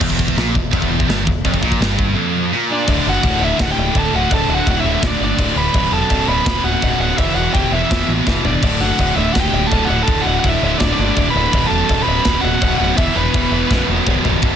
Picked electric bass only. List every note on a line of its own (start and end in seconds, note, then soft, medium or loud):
0.01 0.34 E1 loud
0.37 0.54 A#1 loud
0.55 0.72 E1 medium
0.72 1.06 E1 loud
1.09 1.26 G1 loud
1.27 1.44 E1 medium
1.45 1.62 F1 loud
1.63 1.79 A#1 medium
1.80 2.14 G1 loud
2.88 2.99 D1 medium
3.07 3.17 F#1 medium
3.23 3.34 D1 medium
3.40 3.51 D1 medium
3.59 3.70 D1 loud
3.78 3.89 D1 loud
3.95 4.06 D1 loud
4.13 4.24 D1 medium
4.31 4.42 D1 loud
4.48 4.59 D1 medium
4.66 4.78 D1 loud
4.84 4.95 D1 loud
5.02 5.14 D1 loud
5.20 5.32 G1 medium
5.38 5.49 D1 loud
5.56 5.67 D1 medium
5.74 5.85 D1 loud
5.91 6.03 E1 medium
6.10 6.21 D1 loud
6.28 6.39 D1 medium
6.46 6.57 D1 medium
6.64 6.75 D1 medium
6.83 6.94 D1 medium
6.99 7.11 D1 medium
7.18 7.30 E1 medium
7.35 7.47 E1 medium
7.54 7.66 E1 medium
7.71 7.83 E1 loud
7.91 8.02 E1 medium
8.08 8.20 A1 medium
8.27 8.38 E1 medium
8.44 8.55 E1 medium
8.63 8.74 D1 loud
8.79 8.91 F#1 medium
8.99 9.10 D1 loud
9.16 9.28 D1 medium
9.35 9.46 D1 medium
9.53 9.64 D1 loud
9.71 9.83 D1 medium
9.89 10.00 D1 medium
10.08 10.19 D1 medium
10.26 10.37 D1 medium
10.44 10.55 D1 medium
10.63 10.74 D1 loud
10.81 10.92 D1 loud
10.99 11.10 G1 loud
11.17 11.28 D1 medium
11.35 11.46 D1 medium
11.53 11.64 D1 loud
11.71 11.82 E1 medium
11.89 12.00 D1 medium
12.07 12.18 D1 loud
12.26 12.36 D1 loud
12.43 12.54 D1 loud
12.62 12.73 D1 medium
12.80 12.91 D1 medium
12.98 13.09 E1 loud
13.16 13.27 E1 medium
13.34 13.45 E1 medium
13.52 13.63 E1 loud
13.70 13.81 B0 medium
13.88 13.99 E1 medium
14.07 14.17 B0 medium
14.26 14.36 B0 medium
14.43 14.56 B0 loud